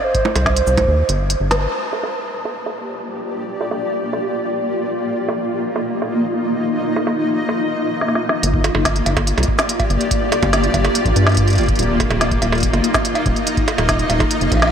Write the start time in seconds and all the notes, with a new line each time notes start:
0.04 C5
0.15 kick, closed hi-hat
0.25 high bongo
0.36 C2, closed hi-hat, high bongo
0.46 kick, snare
0.56 closed hi-hat
0.67 C2, cabasa
0.77 kick, closed hi-hat, high bongo
0.84 D#2, kick
1.09 G1, closed hi-hat
1.30 closed hi-hat
1.40 G1
1.51 snare, closed hi-hat
1.72 A#3 F4 G4 D5
1.93 high bongo
2.03 high bongo
2.45 high bongo
2.66 high bongo
3.61 high bongo
3.71 high bongo
4.13 high bongo
5.08 D#4 D#5
5.29 high bongo
5.76 high bongo
6.02 high bongo
6.96 high bongo
7.07 high bongo
7.49 high bongo
8.01 snare
8.08 snare
8.15 snare
8.29 snare
8.43 G1 A#3 F4 G4 D5, closed hi-hat
8.54 kick
8.64 closed hi-hat, high bongo
8.75 G1, high bongo
8.85 kick, snare, closed hi-hat
8.96 closed hi-hat
9.06 G1, closed hi-hat, cowbell
9.17 kick, closed hi-hat, high bongo
9.27 closed hi-hat
9.38 C2, closed hi-hat, high bongo
9.43 closed hi-hat
9.48 kick
9.59 snare, closed hi-hat, cabasa
9.69 closed hi-hat
9.80 kick, closed hi-hat, cowbell
9.90 G1, closed hi-hat
10.01 closed hi-hat
10.11 kick, closed hi-hat
10.32 closed hi-hat, high bongo
10.43 G1, kick, closed hi-hat, high bongo
10.53 snare, closed hi-hat
10.64 closed hi-hat
10.74 G1, kick, closed hi-hat, cowbell
10.85 closed hi-hat, high bongo
10.95 closed hi-hat
11.05 A#1, kick, closed hi-hat
11.16 G2, closed hi-hat
11.27 snare, closed hi-hat
11.29 closed hi-hat
11.32 closed hi-hat
11.34 kick, closed hi-hat
11.37 closed hi-hat
11.48 closed hi-hat
11.50 closed hi-hat
11.53 closed hi-hat
11.55 G1, closed hi-hat
11.58 closed hi-hat
11.61 closed hi-hat
11.63 closed hi-hat
11.66 kick, closed hi-hat
11.68 closed hi-hat
11.75 D#1 D#4 D#5, closed hi-hat
11.79 closed hi-hat
11.82 closed hi-hat
12.00 kick, closed hi-hat, high bongo
12.10 D#1, closed hi-hat, high bongo
12.21 snare, closed hi-hat
12.31 kick, closed hi-hat
12.42 D#1, closed hi-hat, cowbell
12.52 closed hi-hat, high bongo
12.55 closed hi-hat
12.58 closed hi-hat
12.60 kick, closed hi-hat
12.63 closed hi-hat
12.73 G1, closed hi-hat, high bongo
12.84 closed hi-hat
12.94 kick, snare, closed hi-hat, cabasa
13.05 closed hi-hat
13.15 closed hi-hat, cowbell
13.26 D#1, kick, closed hi-hat
13.36 closed hi-hat
13.47 closed hi-hat
13.57 kick, closed hi-hat
13.68 closed hi-hat, high bongo
13.78 D#1, closed hi-hat, high bongo
13.89 kick, snare, closed hi-hat
13.99 closed hi-hat
14.10 D#1, closed hi-hat, cowbell
14.20 kick, closed hi-hat, high bongo
14.31 closed hi-hat
14.41 F1, closed hi-hat
14.52 A#1, kick, closed hi-hat, cowbell
14.54 cowbell
14.57 cowbell
14.60 snare, closed hi-hat, cowbell
14.62 cowbell
14.65 cowbell
14.67 cowbell